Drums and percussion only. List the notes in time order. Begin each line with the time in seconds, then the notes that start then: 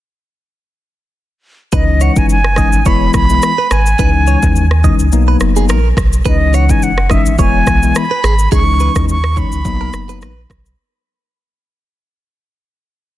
1.73 kick, shaker
2.01 shaker
2.16 kick, shaker
2.29 shaker
2.44 cross-stick
2.56 kick, cross-stick, shaker
2.73 shaker
2.86 kick, shaker
3.14 kick, cross-stick, shaker
3.30 shaker
3.42 cross-stick, shaker
3.71 cross-stick, shaker
3.86 shaker
3.99 kick, shaker
4.27 shaker
4.43 kick, shaker
4.56 shaker
4.71 cross-stick
4.84 kick, shaker
4.99 shaker
5.12 shaker
5.40 cross-stick, shaker
5.56 shaker
5.69 cross-stick, shaker
5.97 kick, cross-stick, shaker
6.13 shaker
6.25 kick, shaker
6.54 shaker
6.69 kick, shaker
6.82 shaker
6.98 cross-stick
7.10 kick, cross-stick, shaker
7.26 shaker
7.39 kick, shaker
7.67 kick, cross-stick, shaker
7.83 shaker
7.95 cross-stick, shaker
8.24 cross-stick, shaker
8.39 shaker
8.52 kick, shaker
8.80 shaker
8.95 kick, cross-stick, shaker
9.09 shaker
9.24 cross-stick
9.37 kick, shaker
9.52 shaker
9.65 kick, shaker
9.93 cross-stick, shaker
10.09 shaker
10.22 cross-stick, shaker
10.50 kick, cross-stick, shaker
10.66 shaker